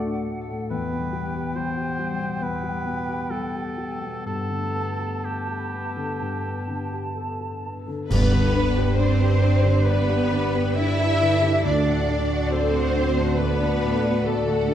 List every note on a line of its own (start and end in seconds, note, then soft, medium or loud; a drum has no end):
0.00 0.68 D2 soft
0.00 0.49 A2 soft
0.00 0.75 D3 medium
0.00 0.28 A3 soft
0.00 0.40 A3 medium
0.00 0.75 A3 soft
0.00 0.06 D4 soft
0.00 0.75 D4 soft
0.00 0.74 F#4 soft
0.00 0.75 F#4 soft
0.00 0.40 A4 soft
0.00 0.12 D5 medium
0.00 0.29 D5 medium
0.00 0.67 F#5 medium
0.06 0.41 D4 soft
0.13 0.74 D5 soft
0.28 0.62 A3 soft
0.41 0.74 A4 soft
0.49 0.71 A2 soft
0.70 2.39 E2 soft
0.70 4.31 E3 soft
0.70 4.24 B3 medium
0.70 1.58 B4 medium
0.70 4.23 G5 medium
0.92 1.27 B2 soft
0.99 1.54 G3 soft
1.13 1.47 G3 soft
1.27 1.82 G4 soft
1.35 1.69 G4 soft
1.56 2.12 G3 soft
1.56 1.90 G3 soft
1.56 2.44 C5 medium
1.77 2.12 G4 soft
1.83 3.01 G4 soft
1.99 2.34 G3 soft
2.13 2.71 G3 soft
2.20 2.56 B2 soft
2.40 4.22 E2 soft
2.40 4.31 E4 soft
2.40 3.32 B4 medium
2.63 3.00 G3 soft
2.72 3.31 G3 soft
2.85 3.23 B2 soft
3.02 3.62 G4 soft
3.08 3.46 G4 soft
3.30 3.69 G3 soft
3.30 3.93 G3 soft
3.30 4.26 A4 medium
3.55 3.93 G4 soft
3.63 4.91 G4 soft
3.78 4.17 G3 soft
3.94 7.84 G3 soft
4.01 4.27 B2 soft
4.26 6.17 G2 soft
4.26 8.08 G2 soft
4.26 7.73 B3 soft
4.26 5.26 A4 medium
4.26 7.73 A5 soft
4.50 4.90 D3 soft
4.59 8.49 A3 soft
4.74 5.15 B3 soft
4.92 6.84 G4 soft
4.99 5.39 G4 soft
5.23 7.17 G4 soft
5.23 5.64 A4 soft
5.23 5.89 A4 soft
5.48 5.88 G4 soft
5.58 9.48 B5 soft
5.73 6.12 B3 soft
5.90 7.16 A4 soft
5.97 6.36 D3 soft
6.21 8.06 G2 soft
6.21 8.14 D3 soft
6.44 6.83 B3 soft
6.68 7.07 D3 soft
6.85 8.76 G4 soft
6.92 7.31 G4 soft
7.15 7.55 A4 soft
7.15 7.78 A4 soft
7.41 7.79 G4 soft
7.65 8.02 B3 soft
7.79 8.14 A4 soft
7.88 8.11 D3 soft
8.09 11.68 G2 medium
8.09 9.81 G2 medium
8.09 9.38 G2 loud
8.09 11.61 G2 medium
8.09 8.95 B3 medium
8.09 11.61 G4 medium
8.09 8.94 B4 medium
8.09 8.30 B4 medium
8.09 11.60 D5 medium
8.09 8.31 D5 medium
8.09 concert bass drum medium
8.09 crash medium
8.31 11.20 D3 medium
8.31 8.68 D3 soft
8.31 8.54 G4 medium
8.31 8.53 B4 medium
8.54 8.98 D4 medium
8.54 8.90 D4 soft
8.54 8.75 B4 medium
8.54 8.77 D5 soft
8.76 8.98 G4 medium
8.76 10.75 G4 soft
8.76 9.12 G4 medium
8.76 8.97 B4 medium
8.96 9.85 C4 medium
8.96 9.33 D4 medium
8.96 10.99 D4 medium
8.96 9.18 B4 medium
8.96 9.84 C5 medium
8.96 9.85 C5 medium
8.96 9.18 D5 medium
9.20 9.42 G4 medium
9.20 9.55 G4 soft
9.20 9.40 B4 medium
9.20 9.61 D5 medium
9.41 9.77 D4 soft
9.41 9.62 B4 medium
9.41 9.63 D5 medium
9.41 9.84 G5 medium
9.62 9.99 D3 soft
9.62 9.85 G4 medium
9.62 9.84 B4 medium
9.62 10.07 D5 medium
9.84 11.61 G2 medium
9.84 10.77 B3 medium
9.84 10.77 B4 medium
9.84 10.06 B4 medium
9.84 10.77 B4 medium
9.84 10.06 D5 medium
9.84 10.30 G5 medium
10.07 10.45 D4 soft
10.07 10.31 G4 medium
10.07 10.28 B4 medium
10.07 10.53 D5 medium
10.29 10.68 D3 soft
10.29 10.51 B4 medium
10.29 10.54 D5 medium
10.29 11.69 G5 medium
10.53 10.77 G4 soft
10.53 10.91 G4 soft
10.53 10.74 B4 soft
10.53 12.72 D5 medium
10.75 11.13 D4 medium
10.75 11.63 E4 loud
10.75 11.68 G4 medium
10.75 10.97 B4 medium
10.75 10.97 D5 medium
10.75 11.65 E5 medium
10.98 11.42 D4 medium
10.98 11.21 G4 medium
10.98 11.35 G4 soft
10.98 11.19 B4 medium
11.20 11.63 D3 medium
11.20 11.56 D4 soft
11.20 11.41 B4 medium
11.20 11.43 D5 medium
11.43 11.65 D3 soft
11.43 12.07 D4 soft
11.43 11.65 G4 medium
11.43 11.65 B4 medium
11.64 13.35 D2 medium
11.64 14.74 D2 medium
11.64 14.74 D3 medium
11.64 12.52 D4 medium
11.64 14.74 F#4 medium
11.64 11.86 A4 medium
11.64 14.74 D5 medium
11.64 12.50 D5 medium
11.64 11.85 D5 medium
11.64 12.51 D5 medium
11.86 12.22 A2 soft
11.86 14.74 A3 medium
11.86 12.08 F#4 medium
11.86 12.08 F#5 medium
12.08 14.67 D4 medium
12.08 12.43 D4 medium
12.08 12.31 A4 soft
12.08 12.31 D5 soft
12.29 14.46 F#4 soft
12.29 12.65 F#4 soft
12.29 12.52 F#4 soft
12.29 12.53 F#5 medium
12.51 13.39 C4 medium
12.51 14.25 A4 medium
12.51 12.86 A4 soft
12.51 12.73 A4 medium
12.51 13.38 C5 medium
12.51 13.39 C5 medium
12.51 12.73 D5 medium
12.73 13.08 F#4 soft
12.73 12.96 F#4 medium
12.73 14.03 D5 medium
12.73 12.96 F#5 soft
12.95 13.30 D4 soft
12.95 13.18 A4 medium
12.95 13.18 D5 medium
12.95 13.38 F#5 soft
13.17 13.52 A2 soft
13.17 13.40 F#4 medium
13.17 13.40 F#5 medium
13.17 13.59 A5 medium
13.37 14.74 D2 medium
13.37 14.26 B3 medium
13.37 13.60 A4 medium
13.37 14.24 B4 medium
13.37 14.25 B4 medium
13.37 13.60 D5 medium
13.37 13.81 F#5 soft
13.59 13.95 D4 soft
13.59 13.83 F#4 medium
13.59 13.83 F#5 medium
13.59 14.74 A5 medium
13.82 14.17 A2 soft
13.82 14.05 A4 medium
13.82 14.05 D5 medium
13.82 14.74 F#5 medium
14.04 14.38 F#4 soft
14.04 14.26 F#4 soft
14.04 14.74 D5 medium
14.04 14.26 F#5 soft
14.24 14.74 A3 medium
14.24 14.74 A4 medium
14.24 14.60 A4 soft
14.24 14.74 A4 medium
14.24 14.46 A4 medium
14.24 14.46 D5 medium
14.47 14.74 F#4 soft
14.47 14.69 F#4 soft
14.47 14.69 F#5 medium
14.68 14.74 D4 soft
14.68 14.74 D4 medium
14.68 14.74 A4 medium
14.68 14.74 D5 medium